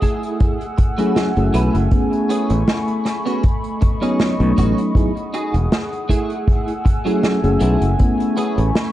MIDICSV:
0, 0, Header, 1, 7, 480
1, 0, Start_track
1, 0, Tempo, 759494
1, 1213, Time_signature, 4, 2, 24, 8
1, 5637, End_track
2, 0, Start_track
2, 0, Title_t, "Ambient pad"
2, 0, Program_c, 0, 92
2, 11, Note_on_c, 0, 80, 81
2, 12, Note_on_c, 0, 57, 86
2, 13, Note_on_c, 0, 78, 79
2, 13, Note_on_c, 0, 88, 95
2, 1201, Note_off_c, 0, 78, 0
2, 1201, Note_off_c, 0, 88, 0
2, 1214, Note_on_c, 0, 83, 78
2, 1214, Note_on_c, 0, 85, 90
2, 2151, Note_off_c, 0, 80, 0
2, 2164, Note_off_c, 0, 85, 0
2, 2175, Note_on_c, 0, 75, 82
2, 2175, Note_on_c, 0, 85, 93
2, 3107, Note_off_c, 0, 57, 0
2, 3115, Note_off_c, 0, 83, 0
2, 3125, Note_off_c, 0, 75, 0
2, 3125, Note_off_c, 0, 85, 0
2, 3134, Note_on_c, 0, 78, 77
2, 3134, Note_on_c, 0, 87, 88
2, 3136, Note_on_c, 0, 68, 80
2, 3847, Note_off_c, 0, 87, 0
2, 3848, Note_off_c, 0, 68, 0
2, 3849, Note_on_c, 0, 88, 98
2, 3850, Note_on_c, 0, 57, 86
2, 3850, Note_on_c, 0, 80, 80
2, 5035, Note_off_c, 0, 78, 0
2, 5039, Note_off_c, 0, 88, 0
2, 5054, Note_on_c, 0, 85, 92
2, 5055, Note_on_c, 0, 83, 75
2, 5637, Note_off_c, 0, 57, 0
2, 5637, Note_off_c, 0, 80, 0
2, 5637, Note_off_c, 0, 83, 0
2, 5637, Note_off_c, 0, 85, 0
2, 5637, End_track
3, 0, Start_track
3, 0, Title_t, "Clean electric guitar"
3, 0, Program_c, 1, 27
3, 10, Note_on_c, 1, 57, 84
3, 16, Note_on_c, 1, 64, 73
3, 18, Note_on_c, 1, 68, 97
3, 403, Note_off_c, 1, 57, 0
3, 404, Note_off_c, 1, 64, 0
3, 407, Note_off_c, 1, 68, 0
3, 617, Note_on_c, 1, 57, 78
3, 622, Note_on_c, 1, 64, 59
3, 625, Note_on_c, 1, 66, 85
3, 731, Note_off_c, 1, 57, 0
3, 733, Note_off_c, 1, 64, 0
3, 735, Note_off_c, 1, 66, 0
3, 972, Note_on_c, 1, 57, 88
3, 974, Note_on_c, 1, 64, 81
3, 979, Note_on_c, 1, 71, 101
3, 1102, Note_off_c, 1, 57, 0
3, 1103, Note_off_c, 1, 64, 0
3, 1105, Note_off_c, 1, 71, 0
3, 1450, Note_on_c, 1, 59, 84
3, 1455, Note_on_c, 1, 61, 80
3, 1458, Note_on_c, 1, 68, 93
3, 1581, Note_off_c, 1, 59, 0
3, 1583, Note_off_c, 1, 61, 0
3, 1585, Note_off_c, 1, 68, 0
3, 2058, Note_on_c, 1, 59, 81
3, 2062, Note_on_c, 1, 61, 75
3, 2067, Note_on_c, 1, 66, 80
3, 2171, Note_off_c, 1, 59, 0
3, 2174, Note_off_c, 1, 61, 0
3, 2175, Note_off_c, 1, 66, 0
3, 2539, Note_on_c, 1, 61, 74
3, 2543, Note_on_c, 1, 63, 70
3, 2547, Note_on_c, 1, 68, 83
3, 2652, Note_off_c, 1, 61, 0
3, 2654, Note_off_c, 1, 63, 0
3, 2656, Note_off_c, 1, 68, 0
3, 2893, Note_on_c, 1, 61, 88
3, 2895, Note_on_c, 1, 63, 84
3, 2899, Note_on_c, 1, 66, 99
3, 3022, Note_off_c, 1, 61, 0
3, 3023, Note_off_c, 1, 63, 0
3, 3025, Note_off_c, 1, 66, 0
3, 3372, Note_on_c, 1, 63, 83
3, 3375, Note_on_c, 1, 66, 78
3, 3378, Note_on_c, 1, 68, 93
3, 3501, Note_off_c, 1, 63, 0
3, 3503, Note_off_c, 1, 66, 0
3, 3505, Note_off_c, 1, 68, 0
3, 3848, Note_on_c, 1, 57, 87
3, 3852, Note_on_c, 1, 64, 85
3, 3856, Note_on_c, 1, 68, 100
3, 4242, Note_off_c, 1, 57, 0
3, 4244, Note_off_c, 1, 64, 0
3, 4246, Note_off_c, 1, 68, 0
3, 4457, Note_on_c, 1, 57, 79
3, 4461, Note_on_c, 1, 64, 72
3, 4464, Note_on_c, 1, 68, 85
3, 4571, Note_off_c, 1, 57, 0
3, 4573, Note_off_c, 1, 64, 0
3, 4574, Note_off_c, 1, 68, 0
3, 4807, Note_on_c, 1, 57, 89
3, 4811, Note_on_c, 1, 64, 82
3, 4814, Note_on_c, 1, 68, 100
3, 4939, Note_off_c, 1, 57, 0
3, 4941, Note_off_c, 1, 64, 0
3, 4942, Note_off_c, 1, 68, 0
3, 5287, Note_on_c, 1, 59, 83
3, 5291, Note_on_c, 1, 61, 79
3, 5295, Note_on_c, 1, 68, 94
3, 5419, Note_off_c, 1, 59, 0
3, 5421, Note_off_c, 1, 61, 0
3, 5423, Note_off_c, 1, 68, 0
3, 5637, End_track
4, 0, Start_track
4, 0, Title_t, "FM electric piano"
4, 0, Program_c, 2, 5
4, 618, Note_on_c, 2, 54, 95
4, 620, Note_on_c, 2, 57, 89
4, 624, Note_on_c, 2, 61, 87
4, 625, Note_on_c, 2, 64, 88
4, 628, Note_on_c, 2, 68, 109
4, 829, Note_off_c, 2, 54, 0
4, 830, Note_off_c, 2, 57, 0
4, 832, Note_off_c, 2, 61, 0
4, 833, Note_off_c, 2, 64, 0
4, 834, Note_off_c, 2, 68, 0
4, 860, Note_on_c, 2, 54, 91
4, 863, Note_on_c, 2, 57, 80
4, 863, Note_on_c, 2, 61, 82
4, 867, Note_on_c, 2, 64, 82
4, 869, Note_on_c, 2, 68, 97
4, 1186, Note_off_c, 2, 54, 0
4, 1187, Note_off_c, 2, 57, 0
4, 1187, Note_off_c, 2, 61, 0
4, 1189, Note_off_c, 2, 64, 0
4, 1190, Note_off_c, 2, 68, 0
4, 1208, Note_on_c, 2, 57, 87
4, 1214, Note_on_c, 2, 59, 76
4, 1218, Note_on_c, 2, 61, 74
4, 1222, Note_on_c, 2, 64, 77
4, 1226, Note_on_c, 2, 68, 93
4, 2157, Note_off_c, 2, 57, 0
4, 2160, Note_off_c, 2, 59, 0
4, 2162, Note_off_c, 2, 61, 0
4, 2164, Note_off_c, 2, 64, 0
4, 2167, Note_off_c, 2, 68, 0
4, 2535, Note_on_c, 2, 54, 92
4, 2536, Note_on_c, 2, 59, 84
4, 2540, Note_on_c, 2, 61, 82
4, 2541, Note_on_c, 2, 63, 80
4, 2544, Note_on_c, 2, 73, 99
4, 2747, Note_off_c, 2, 54, 0
4, 2748, Note_off_c, 2, 59, 0
4, 2750, Note_off_c, 2, 61, 0
4, 2751, Note_off_c, 2, 63, 0
4, 2752, Note_off_c, 2, 73, 0
4, 2778, Note_on_c, 2, 54, 86
4, 2781, Note_on_c, 2, 59, 83
4, 2784, Note_on_c, 2, 61, 83
4, 2787, Note_on_c, 2, 63, 82
4, 2789, Note_on_c, 2, 57, 99
4, 3105, Note_off_c, 2, 54, 0
4, 3106, Note_off_c, 2, 59, 0
4, 3108, Note_off_c, 2, 61, 0
4, 3109, Note_off_c, 2, 63, 0
4, 3110, Note_off_c, 2, 57, 0
4, 3125, Note_on_c, 2, 54, 95
4, 3128, Note_on_c, 2, 59, 88
4, 3130, Note_on_c, 2, 63, 88
4, 3134, Note_on_c, 2, 64, 92
4, 3135, Note_on_c, 2, 68, 106
4, 3225, Note_off_c, 2, 54, 0
4, 3226, Note_off_c, 2, 59, 0
4, 3227, Note_off_c, 2, 63, 0
4, 3229, Note_off_c, 2, 64, 0
4, 3230, Note_off_c, 2, 68, 0
4, 4453, Note_on_c, 2, 54, 98
4, 4455, Note_on_c, 2, 57, 87
4, 4456, Note_on_c, 2, 61, 86
4, 4460, Note_on_c, 2, 64, 86
4, 4462, Note_on_c, 2, 68, 106
4, 4667, Note_off_c, 2, 54, 0
4, 4668, Note_off_c, 2, 57, 0
4, 4668, Note_off_c, 2, 61, 0
4, 4670, Note_off_c, 2, 64, 0
4, 4671, Note_off_c, 2, 68, 0
4, 4693, Note_on_c, 2, 54, 88
4, 4696, Note_on_c, 2, 57, 82
4, 4700, Note_on_c, 2, 61, 82
4, 4700, Note_on_c, 2, 64, 79
4, 4703, Note_on_c, 2, 68, 102
4, 5022, Note_off_c, 2, 54, 0
4, 5023, Note_off_c, 2, 57, 0
4, 5026, Note_off_c, 2, 61, 0
4, 5026, Note_off_c, 2, 64, 0
4, 5027, Note_off_c, 2, 68, 0
4, 5043, Note_on_c, 2, 57, 81
4, 5048, Note_on_c, 2, 59, 77
4, 5052, Note_on_c, 2, 61, 75
4, 5057, Note_on_c, 2, 64, 77
4, 5063, Note_on_c, 2, 68, 90
4, 5637, Note_off_c, 2, 57, 0
4, 5637, Note_off_c, 2, 59, 0
4, 5637, Note_off_c, 2, 61, 0
4, 5637, Note_off_c, 2, 64, 0
4, 5637, Note_off_c, 2, 68, 0
4, 5637, End_track
5, 0, Start_track
5, 0, Title_t, "Fingered electric bass"
5, 0, Program_c, 3, 33
5, 864, Note_on_c, 3, 30, 85
5, 941, Note_off_c, 3, 30, 0
5, 972, Note_on_c, 3, 35, 93
5, 1063, Note_off_c, 3, 35, 0
5, 1103, Note_on_c, 3, 30, 100
5, 1180, Note_off_c, 3, 30, 0
5, 1583, Note_on_c, 3, 33, 98
5, 1660, Note_off_c, 3, 33, 0
5, 2781, Note_on_c, 3, 35, 102
5, 2859, Note_off_c, 3, 35, 0
5, 2894, Note_on_c, 3, 33, 87
5, 2984, Note_off_c, 3, 33, 0
5, 3501, Note_on_c, 3, 28, 98
5, 3579, Note_off_c, 3, 28, 0
5, 4701, Note_on_c, 3, 30, 86
5, 4779, Note_off_c, 3, 30, 0
5, 4812, Note_on_c, 3, 35, 95
5, 4903, Note_off_c, 3, 35, 0
5, 4940, Note_on_c, 3, 30, 96
5, 5019, Note_off_c, 3, 30, 0
5, 5421, Note_on_c, 3, 33, 97
5, 5499, Note_off_c, 3, 33, 0
5, 5637, End_track
6, 0, Start_track
6, 0, Title_t, "Muted clean electric guitar strokes"
6, 490, Note_on_c, 9, 29, 84
6, 553, Note_off_c, 9, 29, 0
6, 1929, Note_on_c, 9, 29, 84
6, 1993, Note_off_c, 9, 29, 0
6, 2408, Note_on_c, 9, 29, 86
6, 2471, Note_off_c, 9, 29, 0
6, 4328, Note_on_c, 9, 29, 85
6, 4391, Note_off_c, 9, 29, 0
6, 5637, End_track
7, 0, Start_track
7, 0, Title_t, "Drums"
7, 11, Note_on_c, 9, 42, 96
7, 13, Note_on_c, 9, 36, 56
7, 74, Note_off_c, 9, 42, 0
7, 76, Note_off_c, 9, 36, 0
7, 146, Note_on_c, 9, 42, 65
7, 209, Note_off_c, 9, 42, 0
7, 254, Note_on_c, 9, 42, 60
7, 256, Note_on_c, 9, 36, 127
7, 317, Note_off_c, 9, 42, 0
7, 320, Note_off_c, 9, 36, 0
7, 384, Note_on_c, 9, 42, 43
7, 447, Note_off_c, 9, 42, 0
7, 492, Note_on_c, 9, 42, 106
7, 496, Note_on_c, 9, 36, 113
7, 556, Note_off_c, 9, 42, 0
7, 559, Note_off_c, 9, 36, 0
7, 621, Note_on_c, 9, 42, 65
7, 684, Note_off_c, 9, 42, 0
7, 733, Note_on_c, 9, 42, 62
7, 734, Note_on_c, 9, 38, 125
7, 796, Note_off_c, 9, 42, 0
7, 797, Note_off_c, 9, 38, 0
7, 862, Note_on_c, 9, 42, 42
7, 925, Note_off_c, 9, 42, 0
7, 973, Note_on_c, 9, 42, 97
7, 1036, Note_off_c, 9, 42, 0
7, 1104, Note_on_c, 9, 42, 67
7, 1167, Note_off_c, 9, 42, 0
7, 1209, Note_on_c, 9, 42, 69
7, 1212, Note_on_c, 9, 36, 118
7, 1272, Note_off_c, 9, 42, 0
7, 1275, Note_off_c, 9, 36, 0
7, 1345, Note_on_c, 9, 42, 46
7, 1408, Note_off_c, 9, 42, 0
7, 1454, Note_on_c, 9, 42, 104
7, 1517, Note_off_c, 9, 42, 0
7, 1579, Note_on_c, 9, 42, 69
7, 1642, Note_off_c, 9, 42, 0
7, 1692, Note_on_c, 9, 38, 117
7, 1696, Note_on_c, 9, 42, 66
7, 1756, Note_off_c, 9, 38, 0
7, 1759, Note_off_c, 9, 42, 0
7, 1818, Note_on_c, 9, 42, 44
7, 1881, Note_off_c, 9, 42, 0
7, 1931, Note_on_c, 9, 38, 37
7, 1932, Note_on_c, 9, 42, 101
7, 1994, Note_off_c, 9, 38, 0
7, 1996, Note_off_c, 9, 42, 0
7, 2064, Note_on_c, 9, 42, 62
7, 2127, Note_off_c, 9, 42, 0
7, 2171, Note_on_c, 9, 42, 67
7, 2175, Note_on_c, 9, 36, 125
7, 2234, Note_off_c, 9, 42, 0
7, 2238, Note_off_c, 9, 36, 0
7, 2300, Note_on_c, 9, 42, 43
7, 2363, Note_off_c, 9, 42, 0
7, 2412, Note_on_c, 9, 42, 95
7, 2417, Note_on_c, 9, 36, 107
7, 2475, Note_off_c, 9, 42, 0
7, 2480, Note_off_c, 9, 36, 0
7, 2543, Note_on_c, 9, 42, 65
7, 2606, Note_off_c, 9, 42, 0
7, 2650, Note_on_c, 9, 42, 68
7, 2653, Note_on_c, 9, 38, 116
7, 2714, Note_off_c, 9, 42, 0
7, 2716, Note_off_c, 9, 38, 0
7, 2785, Note_on_c, 9, 42, 40
7, 2848, Note_off_c, 9, 42, 0
7, 2892, Note_on_c, 9, 42, 88
7, 2895, Note_on_c, 9, 36, 60
7, 2955, Note_off_c, 9, 42, 0
7, 2958, Note_off_c, 9, 36, 0
7, 3022, Note_on_c, 9, 42, 65
7, 3085, Note_off_c, 9, 42, 0
7, 3128, Note_on_c, 9, 36, 112
7, 3137, Note_on_c, 9, 42, 66
7, 3192, Note_off_c, 9, 36, 0
7, 3201, Note_off_c, 9, 42, 0
7, 3265, Note_on_c, 9, 42, 41
7, 3328, Note_off_c, 9, 42, 0
7, 3373, Note_on_c, 9, 42, 94
7, 3436, Note_off_c, 9, 42, 0
7, 3502, Note_on_c, 9, 42, 59
7, 3565, Note_off_c, 9, 42, 0
7, 3614, Note_on_c, 9, 42, 67
7, 3616, Note_on_c, 9, 38, 126
7, 3678, Note_off_c, 9, 42, 0
7, 3679, Note_off_c, 9, 38, 0
7, 3746, Note_on_c, 9, 42, 42
7, 3809, Note_off_c, 9, 42, 0
7, 3851, Note_on_c, 9, 36, 62
7, 3858, Note_on_c, 9, 42, 94
7, 3914, Note_off_c, 9, 36, 0
7, 3922, Note_off_c, 9, 42, 0
7, 3980, Note_on_c, 9, 42, 58
7, 4044, Note_off_c, 9, 42, 0
7, 4092, Note_on_c, 9, 36, 123
7, 4095, Note_on_c, 9, 42, 58
7, 4156, Note_off_c, 9, 36, 0
7, 4158, Note_off_c, 9, 42, 0
7, 4219, Note_on_c, 9, 42, 47
7, 4283, Note_off_c, 9, 42, 0
7, 4332, Note_on_c, 9, 36, 115
7, 4332, Note_on_c, 9, 42, 90
7, 4395, Note_off_c, 9, 36, 0
7, 4395, Note_off_c, 9, 42, 0
7, 4466, Note_on_c, 9, 42, 69
7, 4530, Note_off_c, 9, 42, 0
7, 4572, Note_on_c, 9, 38, 109
7, 4572, Note_on_c, 9, 42, 67
7, 4635, Note_off_c, 9, 38, 0
7, 4635, Note_off_c, 9, 42, 0
7, 4702, Note_on_c, 9, 42, 44
7, 4766, Note_off_c, 9, 42, 0
7, 4806, Note_on_c, 9, 42, 103
7, 4869, Note_off_c, 9, 42, 0
7, 4940, Note_on_c, 9, 42, 66
7, 5003, Note_off_c, 9, 42, 0
7, 5051, Note_on_c, 9, 42, 67
7, 5056, Note_on_c, 9, 36, 107
7, 5115, Note_off_c, 9, 42, 0
7, 5119, Note_off_c, 9, 36, 0
7, 5183, Note_on_c, 9, 42, 45
7, 5246, Note_off_c, 9, 42, 0
7, 5291, Note_on_c, 9, 42, 96
7, 5354, Note_off_c, 9, 42, 0
7, 5422, Note_on_c, 9, 42, 61
7, 5485, Note_off_c, 9, 42, 0
7, 5532, Note_on_c, 9, 38, 115
7, 5534, Note_on_c, 9, 42, 59
7, 5595, Note_off_c, 9, 38, 0
7, 5597, Note_off_c, 9, 42, 0
7, 5637, End_track
0, 0, End_of_file